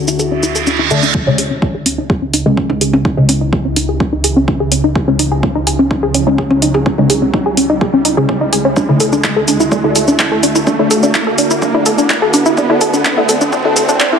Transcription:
Already playing: ambient pad D2 D3 E4 F#4
0.08 synth arpeggio sound E4, shaker
0.19 synth arpeggio sound A4, reverse cymbal, shaker
0.32 synth arpeggio sound D4
0.43 synth arpeggio sound E4, shaker
0.55 synth arpeggio sound A4, shaker
0.67 synth arpeggio sound D4, shaker
0.79 synth arpeggio sound E4
0.91 synth stab D3 A3 D4, synth arpeggio sound A4, shaker
1.03 synth arpeggio sound D4, shaker
1.14 ambient pad C#2 C#3 D#4 E4, synth arpeggio sound C#4, kick, riser
1.27 synth stab C#3 G#3 C#4, synth arpeggio sound D#4
1.38 synth arpeggio sound G#4, open hi-hat
1.51 synth arpeggio sound C#4
1.62 synth arpeggio sound D#4, kick
1.74 synth arpeggio sound G#4
1.86 synth arpeggio sound C#4, open hi-hat
1.98 synth arpeggio sound D#4
2.10 synth arpeggio sound G#4, kick
2.22 synth arpeggio sound C#4
2.34 synth arpeggio sound D#4, open hi-hat
2.46 synth stab C#3 G#3 C#4, synth arpeggio sound G#4
2.57 synth arpeggio sound C#4, kick
2.70 synth arpeggio sound D#4, mid tom
2.81 synth arpeggio sound G#4, open hi-hat
2.93 synth arpeggio sound C#4, mid tom
3.05 synth arpeggio sound D#4, kick
3.17 synth stab C#3 G#3 C#4, synth arpeggio sound G#4
3.29 synth arpeggio sound C#4, mid tom, open hi-hat
3.41 synth arpeggio sound D#4
3.53 synth arpeggio sound G#4, kick
3.65 synth arpeggio sound C#4
3.76 synth arpeggio sound D#4, open hi-hat
3.89 synth arpeggio sound G#4
4.00 synth arpeggio sound C#4, kick
4.13 synth arpeggio sound D#4
4.24 synth arpeggio sound G#4, open hi-hat
4.36 synth arpeggio sound C#4
4.48 synth arpeggio sound D#4, kick
4.60 synth arpeggio sound G#4
4.72 synth arpeggio sound C#4, open hi-hat
4.84 synth arpeggio sound D#4
4.95 synth arpeggio sound G#4, kick
5.08 synth stab C#3 G#3 C#4, synth arpeggio sound C#4
5.19 synth arpeggio sound D#4, open hi-hat
5.32 synth arpeggio sound G#4
5.43 synth arpeggio sound C#4, kick
5.55 synth arpeggio sound D#4
5.67 synth arpeggio sound G#4, open hi-hat
5.79 synth arpeggio sound C#4
5.91 synth arpeggio sound D#4, kick
6.03 synth arpeggio sound G#4
6.14 synth arpeggio sound C#4, open hi-hat
6.27 synth stab C#3 G#3 C#4, synth arpeggio sound D#4
6.38 synth arpeggio sound G#4, kick
6.51 synth arpeggio sound C#4, mid tom
6.62 synth arpeggio sound D#4, open hi-hat
6.74 synth arpeggio sound G#4, mid tom
6.86 synth arpeggio sound C#4, kick
6.98 synth stab C#3 G#3 C#4, synth arpeggio sound D#4
7.10 synth arpeggio sound G#4, mid tom, open hi-hat
7.22 synth arpeggio sound C#4
7.34 synth arpeggio sound D#4, kick
7.46 synth arpeggio sound G#4
7.57 synth arpeggio sound C#4, open hi-hat
7.70 synth arpeggio sound D#4
7.81 synth arpeggio sound G#4, kick
7.93 synth arpeggio sound C#4
8.05 synth arpeggio sound D#4, open hi-hat
8.17 synth stab C#3 G#3 C#4, synth arpeggio sound G#4
8.29 synth arpeggio sound C#4, kick
8.41 synth arpeggio sound D#4
8.53 synth arpeggio sound G#4, open hi-hat
8.65 synth arpeggio sound C#4
8.76 ambient pad D2 D3 F#4, synth arpeggio sound D4, kick, shaker
8.89 synth stab D3 A3 D4, synth arpeggio sound E4
9.00 synth arpeggio sound A4, open hi-hat, shaker
9.13 synth arpeggio sound D4, shaker
9.24 synth arpeggio sound E4, kick, clap, shaker
9.36 synth arpeggio sound A4
9.48 synth arpeggio sound D4, open hi-hat, shaker
9.60 synth arpeggio sound E4, shaker
9.72 synth arpeggio sound D4, kick, shaker
9.84 synth stab D3 A3 D4, synth arpeggio sound E4
9.96 synth arpeggio sound A4, open hi-hat, shaker
10.08 synth arpeggio sound D4, shaker
10.19 synth arpeggio sound E4, kick, clap, shaker
10.32 synth arpeggio sound A4, mid tom
10.43 synth arpeggio sound D4, open hi-hat, shaker
10.55 synth arpeggio sound E4, mid tom, shaker
10.67 synth arpeggio sound D4, kick, shaker
10.79 synth stab D3 A3 D4, synth arpeggio sound E4
10.91 synth arpeggio sound A4, mid tom, open hi-hat, shaker
11.03 synth arpeggio sound D4, shaker
11.15 synth arpeggio sound E4, kick, clap, shaker
11.27 synth arpeggio sound A4
11.38 synth arpeggio sound D4, open hi-hat, shaker
11.51 synth arpeggio sound E4, shaker
11.62 synth arpeggio sound D4, kick, shaker
11.74 synth stab D3 A3 D4, synth arpeggio sound E4
11.86 synth arpeggio sound A4, open hi-hat, shaker
11.98 synth arpeggio sound D4, shaker
12.10 synth arpeggio sound E4, kick, clap, shaker
12.22 synth arpeggio sound A4
12.34 synth arpeggio sound D4, open hi-hat, shaker
12.46 synth arpeggio sound E4, shaker
12.57 synth arpeggio sound D4, kick, shaker
12.70 synth stab D3 A3 D4, synth arpeggio sound E4
12.81 synth arpeggio sound A4, open hi-hat, shaker
12.94 synth arpeggio sound D4, shaker
13.05 synth arpeggio sound D4, kick, clap, shaker
13.17 synth stab D3 A3 D4, synth arpeggio sound E4
13.29 synth arpeggio sound A4, open hi-hat, shaker
13.41 synth arpeggio sound D4, shaker
13.53 synth arpeggio sound D4, kick, shaker
13.65 synth stab D3 A3 D4, synth arpeggio sound E4
13.76 synth arpeggio sound A4, open hi-hat, shaker
13.89 synth arpeggio sound D4, shaker
14.00 synth arpeggio sound D4, kick, clap, shaker
14.12 synth stab D3 A3 D4, synth arpeggio sound E4, mid tom

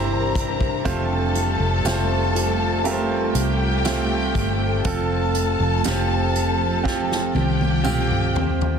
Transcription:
Already playing: fingered electric bass G1, steel-string acoustic guitar C3 C4 E4 C5, ambient pad C3 E3 G3 D4 G4, grand piano E4 G4 C5, violin section A#4 A#5
0.35 steel-string acoustic guitar C4, kick, closed hi-hat
0.61 kick
0.85 fingered electric bass F1, steel-string acoustic guitar F3, ambient pad G3 A3 F4 G4, grand piano A3 C4 F4 G4 C5, violin section A4 A5, kick, closed hi-hat
1.35 steel-string acoustic guitar F4, closed hi-hat
1.60 fingered electric bass F1
1.84 fingered electric bass F1, grand piano A3 C4 F4 G4 C5, steel-string acoustic guitar C4, snare, closed hi-hat, tambourine
2.35 steel-string acoustic guitar F4, closed hi-hat
2.84 grand piano A3 C4 F4 G4 A#4, ambient pad A4, steel-string acoustic guitar A4, closed hi-hat
2.91 grand piano C5
3.34 fingered electric bass C2, steel-string acoustic guitar F4, violin section G4 G5, closed hi-hat
3.85 grand piano A3 C4 F4 G4 C5, steel-string acoustic guitar A4, snare, closed hi-hat, tambourine
4.35 fingered electric bass G1, steel-string acoustic guitar C4, kick, closed hi-hat
4.84 fingered electric bass F1, steel-string acoustic guitar F3, ambient pad F3, grand piano C4 F4 A4, violin section A4 A5, kick, closed hi-hat
5.35 steel-string acoustic guitar F4, closed hi-hat
5.60 fingered electric bass F1
5.84 fingered electric bass F1, grand piano C4 F4 G4, steel-string acoustic guitar C4, snare, closed hi-hat, tambourine
6.35 steel-string acoustic guitar F4, closed hi-hat
6.83 grand piano C4 F4 G4, steel-string acoustic guitar A4, kick, snare
7.12 snare
7.35 fingered electric bass C2, steel-string acoustic guitar F4, violin section G4 G5, high tom
7.61 high tom
7.84 grand piano C4 F4 G4, steel-string acoustic guitar A4, mid tom, tambourine
8.11 mid tom
8.35 steel-string acoustic guitar C4, floor tom
8.61 floor tom

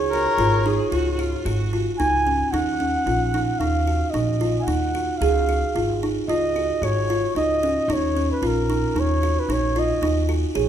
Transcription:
Already playing: upright bass C#2, flugelhorn C#5
0.10 kalimba F#4, viola A#4
0.38 upright bass G#1, kalimba F4
0.66 kalimba D#4, viola G#4
0.92 upright bass C#2, kalimba F4, viola F#4
1.19 viola F4, kalimba F#4
1.44 upright bass G#1, viola F#4, kalimba F#4
1.73 kalimba F4
1.98 upright bass C#2, kalimba D#4, flugelhorn G#5
2.27 kalimba C#4
2.52 upright bass D#2, kalimba D#4, flugelhorn F#5
2.80 kalimba C#4
3.06 upright bass A#1, kalimba F4
3.34 kalimba D#4
3.59 upright bass D#2, kalimba D#4, flugelhorn F5
3.87 kalimba F#4
4.10 upright bass A#1, kalimba D#4, flugelhorn D#5
4.41 kalimba F4
4.60 flugelhorn F#5 G#5
4.67 upright bass D#2, kalimba D#4
4.95 kalimba F#4
5.17 upright bass C#2, flugelhorn F5
5.22 kalimba G#4
5.49 kalimba F#4
5.75 upright bass G#1, kalimba F4
6.03 kalimba D#4
6.28 upright bass C#2, kalimba F4, flugelhorn D#5
6.56 kalimba F#4
6.82 upright bass G#1, kalimba F#4, flugelhorn C#5
7.10 kalimba F4
7.35 upright bass C#2, kalimba D#4, flugelhorn D#5
7.63 kalimba C#4
7.88 upright bass D#2, kalimba D#4
7.93 flugelhorn C#5
8.17 kalimba C#4
8.32 flugelhorn B4
8.42 upright bass A#1, kalimba F4
8.47 flugelhorn A#4
8.70 kalimba D#4
8.95 upright bass D#2, kalimba D#4
9.00 flugelhorn C#5
9.23 kalimba F#4
9.40 flugelhorn B4
9.49 upright bass A#1, kalimba D#4, flugelhorn C#5
9.76 kalimba F4, flugelhorn D#5
10.02 upright bass D#2, kalimba D#4
10.29 kalimba F#4
10.55 upright bass A#1, kalimba G#4, flugelhorn C#5

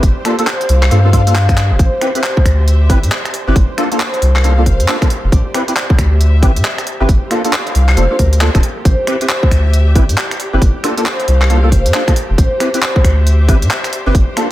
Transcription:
Already playing: string section G4 C5, harp C5 D5
0.03 sub bass G1, kick, closed hi-hat
0.25 synth stab A#3 D4 F4 A4, finger snap, open hi-hat
0.39 synth stab A#3 D4 F4 A4, closed hi-hat
0.47 harp C5, string section F5, clap
0.61 closed hi-hat
0.69 sub bass C2, open hi-hat
0.83 harp E5, clap, claves
0.91 sub bass G2, synth stab A#3 D4 F4 A4, closed hi-hat
1.05 synth stab A#3 D4 F4 A4
1.13 synth stab A#3 D4 F4 A4, harp F5, kick, open hi-hat
1.27 synth stab A#3 D4 F4 A4, closed hi-hat
1.35 clap
1.49 finger snap, kick, closed hi-hat
1.57 clap, open hi-hat
1.71 sub bass F1
1.79 sub bass A1, harp C5, kick, closed hi-hat
2.01 synth stab C4 E4 G4 B4, finger snap, open hi-hat
2.15 synth stab C4 E4 G4 B4, harp C5, closed hi-hat
2.24 clap
2.37 kick
2.45 sub bass D2, finger snap, kick, open hi-hat
2.61 string section E5
2.68 closed hi-hat
2.81 harp D5
2.90 sub bass G1, synth stab C4 E4 G4 B4, kick, open hi-hat
3.03 sub bass A2, closed hi-hat
3.11 harp D5, clap
3.25 finger snap, closed hi-hat
3.34 open hi-hat
3.47 sub bass G1, synth stab C4 E4 G4 B4
3.56 sub bass G1, kick, closed hi-hat
3.78 synth stab A#3 D4 F4 A4, finger snap, open hi-hat
3.92 synth stab A#3 D4 F4 A4, closed hi-hat
4.00 harp C5, clap
4.14 closed hi-hat
4.22 sub bass C2, open hi-hat
4.35 harp A#4, string section F5, clap, claves
4.44 synth stab A#3 D4 F4 A4, closed hi-hat
4.58 synth stab A#3 D4 F4 A4
4.66 sub bass F1, harp C5, kick, open hi-hat
4.80 sub bass G2, closed hi-hat
4.88 synth stab A#3 D4 F4 A4, clap
5.02 synth stab A#3 D4 F4 A4, finger snap, kick, closed hi-hat
5.10 open hi-hat
5.24 sub bass F1
5.32 sub bass A1, string section G4, harp D5, kick, closed hi-hat
5.54 synth stab C4 E4 G4 B4, finger snap, open hi-hat
5.68 synth stab C4 E4 G4 B4, harp D5, closed hi-hat
5.76 clap
5.90 kick
5.98 sub bass D2, finger snap, kick, open hi-hat
6.14 string section E5
6.21 closed hi-hat
6.34 harp E5
6.43 sub bass G1, synth stab C4 E4 G4 B4, kick, open hi-hat
6.56 sub bass A2, closed hi-hat
6.65 harp E5, clap
6.78 finger snap, closed hi-hat
6.87 open hi-hat
7.00 sub bass G1, synth stab C4 E4 G4 B4
7.09 sub bass G1, kick, closed hi-hat
7.27 synth stab A4, string section F5, finger snap, open hi-hat
7.31 synth stab A#3 D4 F4
7.45 synth stab A#3 D4 F4 A4, closed hi-hat
7.53 harp D5, clap
7.67 closed hi-hat
7.75 sub bass C2, open hi-hat
7.89 harp C5, clap, claves
7.97 sub bass F1, synth stab A#3 D4 F4 A4, closed hi-hat
8.11 synth stab A#3 D4 F4 A4
8.19 sub bass D2, harp A#4, kick, open hi-hat
8.33 closed hi-hat
8.41 synth stab A#3 D4 F4 A4, clap
8.55 sub bass D1, synth stab A#3 D4 F4 A4, finger snap, kick, closed hi-hat
8.63 open hi-hat
8.85 sub bass A1, harp C5, kick, closed hi-hat
9.05 synth stab C4 E4 G4 B4, string section E5, finger snap, open hi-hat
9.21 synth stab C4 E4 G4 B4, harp C5, closed hi-hat
9.29 clap
9.43 kick
9.51 sub bass D2, finger snap, kick, open hi-hat
9.73 closed hi-hat
9.87 harp D5
9.95 sub bass G1, synth stab C4 E4 G4 B4, kick, open hi-hat
10.09 sub bass A2, closed hi-hat
10.18 harp D5, clap
10.31 finger snap, closed hi-hat
10.40 open hi-hat
10.53 sub bass G1, synth stab C4 E4 G4 B4
10.62 sub bass G1, kick, closed hi-hat
10.84 synth stab A#3 D4 F4 A4, finger snap, open hi-hat
10.97 synth stab A#3 D4 F4 A4, string section C5, closed hi-hat
11.06 harp C5, clap
11.11 string section F5
11.20 closed hi-hat
11.28 sub bass C2, open hi-hat
11.42 harp A#4, clap, claves
11.50 synth stab A#3 D4 F4 A4, closed hi-hat
11.64 synth stab A#3 D4 F4 A4
11.72 sub bass F1, harp C5, kick, open hi-hat
11.86 sub bass G2, closed hi-hat
11.94 synth stab A#3 D4 F4 A4, clap
12.08 synth stab A#3 D4 F4 A4, finger snap, kick, closed hi-hat
12.16 open hi-hat
12.30 sub bass F1
12.38 sub bass A1, harp C5, kick, closed hi-hat
12.60 synth stab C4 E4 G4 B4, finger snap, open hi-hat
12.74 synth stab C4 E4 G4 B4, harp C5, closed hi-hat
12.82 clap
12.96 kick
13.04 sub bass D2, finger snap, kick, open hi-hat
13.20 string section E5
13.27 closed hi-hat
13.40 harp D5
13.48 sub bass G1, synth stab C4 E4 G4 B4, kick, open hi-hat
13.62 sub bass A2, closed hi-hat
13.70 harp D5, clap
13.84 finger snap, closed hi-hat
13.93 open hi-hat
14.06 sub bass G1, synth stab C4 E4 G4 B4
14.15 sub bass G1, kick, closed hi-hat
14.37 synth stab A#3 D4 F4 A4, finger snap, open hi-hat

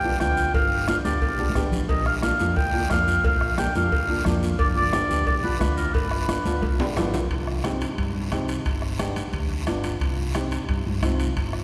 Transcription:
Already playing: fingered electric bass B1, oboe G5
0.03 upright piano B3 D4 F4
0.20 fingered electric bass D2, upright piano B3 D4 F4, oboe G5, bombo low, bombo rim, high conga, short guiro
0.37 short guiro
0.54 fingered electric bass G1, oboe F5, bombo low, cowbell, high conga, long guiro
0.88 upright piano B3 D4 F4, oboe F5, bombo rim, high conga, short guiro
1.05 fingered electric bass D2, upright piano B3 D4 G4, oboe D5, high conga, short guiro
1.21 fingered electric bass B1, bombo low, cowbell, high conga, long guiro
1.39 upright piano B3 D4 G4, high conga
1.50 high conga
1.55 fingered electric bass G#1, upright piano B3 D4 G4, bombo low, bombo rim, short guiro
1.72 low conga, short guiro
1.89 fingered electric bass A#1, oboe D#5, bombo low, cowbell, high conga, long guiro
2.06 oboe F5, bombo rim
2.22 upright piano A#3 D4 F4, oboe F5, bombo rim, high conga, short guiro
2.39 fingered electric bass F2, upright piano A#3 D4 F4, high conga, short guiro
2.56 fingered electric bass D2, oboe G5, bombo low, cowbell, high conga, long guiro
2.73 upright piano A#3 D4 F4
2.90 fingered electric bass F2, upright piano A#3 D4 F4, oboe F5, bombo low, bombo rim, high conga, low timbale, short guiro
3.08 short guiro
3.24 fingered electric bass A#1, oboe F5, bombo low, cowbell, high conga, long guiro
3.41 bombo rim
3.58 upright piano A#3 D4 G4, oboe G5, bombo rim, high conga, short guiro
3.75 fingered electric bass F2, upright piano A#3 D4 F4, oboe F5, high conga, short guiro
3.92 fingered electric bass D2, bombo low, cowbell, high conga, long guiro
4.08 upright piano A#3 D4 F4
4.25 fingered electric bass F2, upright piano A#3 D4 F4, bombo low, bombo rim, high conga, low conga, short guiro
4.43 short guiro
4.59 fingered electric bass G1, oboe D5, bombo low, cowbell, high conga, long guiro
4.77 oboe D5
4.93 upright piano B3 D4 G4, bombo rim, high conga, short guiro
5.09 fingered electric bass D2, upright piano B3 D4 G4, short guiro
5.27 fingered electric bass B1, oboe D5, bombo low, cowbell, high conga, long guiro
5.43 upright piano B3 D4 F4, oboe B4, high conga
5.59 fingered electric bass D2, upright piano B3 D4 F4, oboe B4, bombo low, bombo rim, high conga, short guiro
5.77 oboe A#4, short guiro
5.93 fingered electric bass G1, oboe B4, bombo low, cowbell, high conga, long guiro
6.11 bombo rim
6.28 upright piano B3 D4 F4, bombo rim, high conga, short guiro
6.45 fingered electric bass D2, upright piano B3 D4 F4, high conga, short guiro
6.62 fingered electric bass B1, bombo low, cowbell, high conga, long guiro
6.79 upright piano B3 D4 G4, high timbale
6.96 fingered electric bass G1, upright piano B3 D4 F4, bombo rim, low conga, low timbale, short guiro
7.14 fingered electric bass B1, low conga, low timbale, short guiro
7.30 fingered electric bass C2, bombo low, high conga, high timbale, long guiro
7.47 bombo rim
7.64 upright piano C4 D#4 G4, bombo rim, high conga, high timbale, short guiro
7.81 high timbale, short guiro
7.98 fingered electric bass G2, bombo low, high conga, high timbale, long guiro
8.15 fingered electric bass G2
8.32 fingered electric bass C2, upright piano C4 D#4 G4, bombo low, bombo rim, high conga, high timbale, short guiro
8.48 high timbale, short guiro
8.65 fingered electric bass G1, bombo low, high conga, high timbale, long guiro
8.82 bombo rim
8.99 upright piano B3 D4 G4, bombo rim, high conga, high timbale, short guiro
9.16 high conga, high timbale, short guiro
9.33 fingered electric bass D2, bombo low, high conga, high timbale, long guiro
9.50 fingered electric bass D2
9.66 fingered electric bass G1, upright piano B3 D4 F4, bombo rim, high conga, high timbale, short guiro
9.84 high timbale, short guiro
10.00 fingered electric bass C2, bombo low, high conga, high timbale, long guiro
10.34 upright piano C4 D#4 G4, bombo rim, high conga, high timbale, short guiro
10.51 high timbale, short guiro
10.69 fingered electric bass G2, bombo low, high conga, high timbale, long guiro
10.86 fingered electric bass G2, high conga
11.03 fingered electric bass C2, upright piano C4 D#4 F4, bombo low, bombo rim, high conga, high timbale, short guiro
11.20 high timbale, short guiro
11.36 fingered electric bass G1, bombo low, high conga, high timbale, long guiro
11.53 bombo rim

